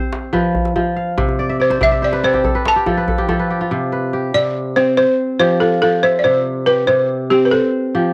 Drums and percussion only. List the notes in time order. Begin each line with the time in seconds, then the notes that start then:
0.13 djembe slap
0.34 djembe tone
0.55 djembe slap, djembe bass
0.65 djembe slap
0.76 djembe tone
1.18 djembe slap, djembe bass
1.29 djembe slap, djembe tone
1.39 djembe slap
1.71 djembe slap
1.81 djembe tone, djembe bass
2.13 djembe slap
2.23 djembe slap
2.34 djembe tone
2.44 djembe bass
2.55 djembe slap
2.65 djembe slap
2.86 djembe tone
2.97 djembe slap
3.08 djembe bass
3.18 djembe slap
3.29 djembe slap, djembe tone
3.39 djembe slap
3.61 djembe slap